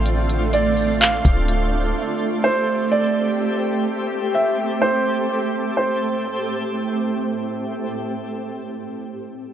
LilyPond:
<<
  \new Staff \with { instrumentName = "Felt piano" } { \time 4/4 \key a \minor \tempo 4 = 126 r4 d''4 f''2 | r4 c''4 d''2 | r4 e''4 c''2 | c''2. r4 |
r1 | }
  \new Staff \with { instrumentName = "Synth texture" } { \time 4/4 \key a \minor <c' f' d''>1 | <a g' c''>1~ | <a g' c''>1 | <a g' c''>1~ |
<a g' c''>1 | }
  \new Staff \with { instrumentName = "Ambient pad" } { \time 4/4 \key a \minor << { <d d' f'>1 | <c' g'>1~ | <c' g'>1 | <a, a c' g'>1~ |
<a, a c' g'>1 | } \\ { a1~ | a1~ | a1 | r1 |
r1 | } >> }
  \new Staff \with { instrumentName = "808-style bass" } { \clef bass \time 4/4 \key a \minor a,,2~ a,,8 d,,4. | r1 | r1 | r1 |
r1 | }
  \new DrumStaff \with { instrumentName = "Drums" } \drummode { \time 4/4 hh8 hh8 hh8 hho8 <hc hh>8 <hh bd>8 hh4 | r4 r4 r4 r4 | r4 r4 r4 r4 | r4 r4 r4 r4 |
r4 r4 r4 r4 | }
>>